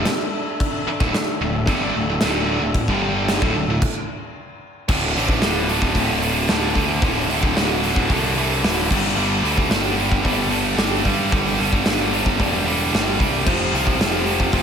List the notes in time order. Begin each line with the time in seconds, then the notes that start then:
Already playing: D4 A4 E5
0.05 snare, crash
0.60 kick, crash
0.86 muted picked electric bass stroke, muted distorted electric guitar stroke
1.00 D1 D2 A2, kick, snare
1.13 muted picked electric bass stroke, muted distorted electric guitar stroke, snare, crash
1.41 D1 D2 A2
1.67 G1 G2 D3 G3, kick, crash
1.93 D1 D2 A2
2.07 D1 D2 A2
2.21 D1 D2 A2 D3, snare, crash
2.61 D1 D2 A2
2.75 kick, crash
2.86 G1 G2 D3 G3 D4, kick
2.91 G3
3.28 snare, crash
3.42 D1 D2 A2 E5, kick
3.56 D1 D2 A2
3.68 D1 D2 A2
3.82 kick, crash
4.88 D1 D2 A2 D3, kick, crash
5.15 A1 D2 A2 D3, open hi-hat
5.28 kick
5.41 D1 D2 A2 D3, snare, open hi-hat
5.69 D2 A2 D3, open hi-hat
5.82 kick
5.95 D1 D2 A2 D3, kick, open hi-hat
6.21 D2 A2 D3, open hi-hat
6.48 D1 D2 A2 D3, snare, open hi-hat
6.75 D2 A2 D3, kick, open hi-hat
7.02 D1 D2 A2 D3, kick, open hi-hat
7.28 D1 D2 A2 D3, open hi-hat
7.43 kick
7.55 D1 D2 A2 D3, snare, open hi-hat
7.84 D2 A2 D3, open hi-hat
7.96 kick
8.10 C2 D2 A2 D3, kick, open hi-hat
8.36 D2 A2 D3, open hi-hat
8.63 D1 D2 A2 D3, snare, open hi-hat
8.91 G1 G2 D3 G3, kick, crash
9.16 G1 G2 D3 G3
9.42 D2 G2 D3 G3, open hi-hat
9.58 kick
9.70 G1 G2 D3 G3, snare, open hi-hat
9.96 G2 D3 G3, open hi-hat
10.12 kick
10.23 G1 G2 D3 G3, kick, open hi-hat
10.49 G2 D3 G3, open hi-hat
10.77 G1 G2 D3 G3, snare, open hi-hat
11.04 G2 D3 G3, kick, open hi-hat
11.31 G1 G2 D3 G3, kick, open hi-hat
11.59 G1 G2 D3 G3, open hi-hat
11.73 kick
11.85 G1 G2 D3 G3, snare, open hi-hat
12.12 G2 D3 G3, open hi-hat
12.26 kick
12.39 E1 G2 D3 G3, kick, open hi-hat
12.66 G2 D3 G3, open hi-hat
12.91 G1 G2 D3 G3, snare, open hi-hat
13.18 C2 G2 D3 G3, kick, open hi-hat
13.44 F1 F2 C3 F3 C4 G4, kick, crash
13.73 C2 F2 C3 F3, open hi-hat
13.87 kick
13.99 F1 F2 C3 F3, snare, open hi-hat
14.26 F2 C3 F3, open hi-hat
14.40 kick
14.53 F1 F2 C3 F3, kick, open hi-hat